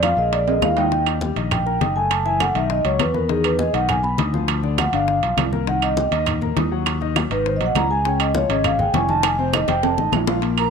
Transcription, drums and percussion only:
0.03 high bongo, high conga, high timbale, low timbale, claves
0.18 high conga
0.33 high bongo, high conga, high timbale
0.48 high bongo, high conga, high timbale
0.62 high bongo, low bongo, high conga, low timbale, claves
0.77 low timbale
0.92 high bongo, high conga
1.06 high bongo, high conga, high timbale, claves
1.21 high bongo, high conga
1.36 high bongo, high conga, high timbale
1.51 high bongo, high conga, low conga, high timbale, claves
1.66 high bongo, high conga
1.81 high bongo, low bongo, high conga, high timbale
2.11 high bongo, high conga, high timbale, claves
2.26 high bongo, high conga
2.40 high bongo, high conga, high timbale, claves
2.55 high bongo, high conga, high timbale
2.70 high bongo, high conga
2.85 high bongo, high conga, high timbale
2.99 high bongo, low bongo, high conga, high timbale, claves
3.14 high conga
3.29 high bongo, high conga
3.44 high bongo, high conga, high timbale, claves
3.59 high bongo, high conga
3.74 high bongo, high conga, high timbale
3.89 high bongo, high conga, low conga, high timbale, claves
4.04 high bongo, high conga
4.18 high bongo, low bongo, high conga, high timbale
4.34 high conga
4.48 high bongo, high conga, high timbale, claves
4.63 high bongo, high conga
4.78 high bongo, high conga, high timbale, claves
4.93 high bongo, high conga, high timbale
5.08 high bongo, high conga
5.23 high bongo, high conga, high timbale
5.37 high bongo, low bongo, high conga, high timbale, low timbale, claves
5.53 high conga
5.67 high bongo, high conga
5.82 high bongo, high conga, high timbale, claves
5.97 high bongo, high conga
6.12 high bongo, high timbale
6.26 high bongo, high conga, low conga, high timbale, claves
6.42 high bongo, high conga, low conga
6.57 high bongo, low bongo, high conga, high timbale, low timbale
6.86 high bongo, high conga, high timbale, claves
7.01 high bongo, high conga
7.16 high bongo, high conga, high timbale, claves
7.31 high bongo, high conga, high timbale
7.45 high bongo, high conga
7.60 high bongo, high conga, high timbale
7.75 high bongo, low bongo, high conga, high timbale, low timbale, claves
8.05 high bongo, high conga
8.20 high bongo, high conga, high timbale, claves
8.35 high bongo, high conga
8.49 high bongo, high conga, high timbale
8.64 high bongo, high conga, low conga, high timbale, claves
8.79 high bongo, high conga, low conga
8.94 high bongo, low bongo, high conga, high timbale, low timbale
9.09 high conga
9.23 high bongo, high timbale, claves
9.39 high conga
9.53 low bongo, high conga, high timbale, claves
9.68 low bongo, high conga, high timbale
9.83 low bongo, high conga, high timbale
9.98 low bongo, high conga
10.13 low bongo, high conga, low timbale, claves
10.27 low bongo, low timbale
10.42 high bongo, high conga, high timbale
10.57 high bongo, high conga, high timbale, claves

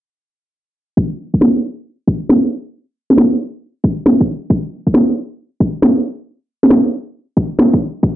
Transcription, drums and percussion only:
0.97 kick
1.34 kick
1.41 snare
2.07 kick
2.29 snare
3.10 snare
3.18 snare
3.84 kick
4.06 snare
4.21 kick
4.50 kick
4.87 kick
4.94 snare
5.60 kick
5.82 snare
6.63 snare
6.70 snare
7.37 kick
7.59 snare
7.73 kick
8.03 kick

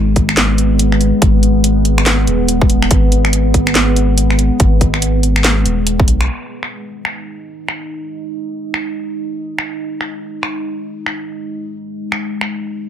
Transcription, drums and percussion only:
0.16 kick, closed hi-hat
0.29 finger snap
0.37 snare, clap, closed hi-hat
0.58 closed hi-hat
0.79 closed hi-hat
0.92 finger snap
1.01 closed hi-hat
1.22 kick, closed hi-hat
1.43 closed hi-hat
1.64 closed hi-hat
1.85 closed hi-hat
1.98 finger snap
2.06 snare, clap, closed hi-hat
2.27 closed hi-hat
2.48 closed hi-hat
2.62 kick
2.70 closed hi-hat
2.82 finger snap
2.91 kick, closed hi-hat
3.12 closed hi-hat
3.25 finger snap
3.33 closed hi-hat
3.54 kick, closed hi-hat
3.67 finger snap
3.75 snare, clap, closed hi-hat
3.96 closed hi-hat
4.18 closed hi-hat
4.30 finger snap
4.39 closed hi-hat
4.60 kick, closed hi-hat
4.81 kick, closed hi-hat
4.94 finger snap
5.02 closed hi-hat
5.23 closed hi-hat
5.36 finger snap
5.44 snare, clap, closed hi-hat
5.66 closed hi-hat
5.87 closed hi-hat
6.00 kick
6.08 closed hi-hat
6.21 finger snap
6.63 finger snap
7.05 finger snap
7.68 finger snap
8.74 finger snap
9.58 finger snap
10.01 finger snap
10.43 finger snap
11.06 finger snap
12.12 finger snap
12.41 finger snap

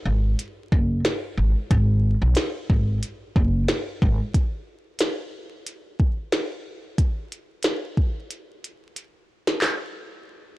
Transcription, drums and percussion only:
0.39 closed hi-hat
0.72 kick
1.05 snare, closed hi-hat
1.71 kick, closed hi-hat
2.35 snare, closed hi-hat
2.70 kick
3.03 closed hi-hat
3.36 kick
3.68 snare, closed hi-hat
4.02 kick
4.34 kick, closed hi-hat
4.99 snare, closed hi-hat
5.67 closed hi-hat
6.00 kick
6.32 snare, closed hi-hat
6.98 kick, closed hi-hat
7.32 closed hi-hat
7.63 snare, closed hi-hat
7.97 kick
8.31 closed hi-hat
8.64 closed hi-hat
8.96 closed hi-hat
9.47 snare
9.62 snare, clap

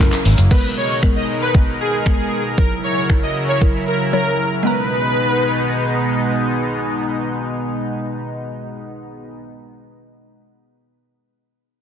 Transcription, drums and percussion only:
0.00 clap
0.12 clap, closed hi-hat, shaker
0.25 open hi-hat, shaker
0.38 closed hi-hat, shaker
0.51 kick, crash
1.03 finger snap, kick
1.55 kick
2.06 finger snap, kick
2.58 kick
3.10 finger snap, kick
3.62 kick

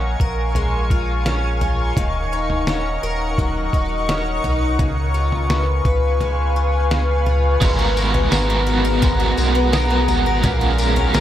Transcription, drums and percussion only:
0.20 kick
0.55 floor tom
0.90 kick
1.26 snare
1.61 floor tom
1.97 kick, floor tom
2.50 floor tom
2.67 snare
3.38 kick, floor tom
3.73 kick
4.09 snare
4.44 floor tom
4.79 kick, floor tom
5.32 floor tom
5.50 snare
5.85 kick, floor tom
6.21 floor tom
6.91 snare
7.27 floor tom
7.61 kick, floor tom, crash, tambourine
7.97 tambourine
8.14 floor tom
8.32 snare, tambourine
9.03 kick, floor tom, tambourine
9.38 tambourine
9.73 snare, tambourine
10.09 floor tom, tambourine
10.44 kick, floor tom, tambourine
10.79 tambourine
10.97 floor tom
11.15 snare, tambourine

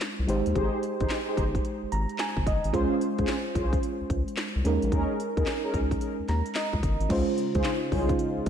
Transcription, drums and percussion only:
0.00 snare, clap, closed hi-hat
0.29 closed hi-hat
0.46 closed hi-hat
0.56 kick, closed hi-hat
0.83 closed hi-hat
1.00 kick, closed hi-hat
1.10 snare, clap, closed hi-hat
1.37 kick, closed hi-hat
1.55 kick, closed hi-hat
1.65 closed hi-hat
1.92 closed hi-hat
2.09 closed hi-hat
2.18 snare, clap, closed hi-hat
2.37 kick
2.47 kick, closed hi-hat
2.64 closed hi-hat
2.74 kick, closed hi-hat
3.01 closed hi-hat
3.18 kick, closed hi-hat
3.27 snare, clap, closed hi-hat
3.55 kick, closed hi-hat
3.73 kick, closed hi-hat
3.83 closed hi-hat
4.10 kick, closed hi-hat
4.28 closed hi-hat
4.37 snare, clap, closed hi-hat
4.65 closed hi-hat
4.82 closed hi-hat
4.92 kick, closed hi-hat
5.20 closed hi-hat
5.37 kick, closed hi-hat
5.46 snare, clap, closed hi-hat
5.74 kick, closed hi-hat
5.91 kick, closed hi-hat
6.01 closed hi-hat
6.28 snare, closed hi-hat
6.46 closed hi-hat
6.55 snare, clap, closed hi-hat
6.73 kick
6.83 kick, closed hi-hat
7.01 closed hi-hat
7.10 kick, closed hi-hat, crash
7.38 closed hi-hat
7.55 kick, closed hi-hat
7.64 snare, clap, closed hi-hat
7.92 kick, open hi-hat
8.09 kick, closed hi-hat
8.19 closed hi-hat
8.46 closed hi-hat

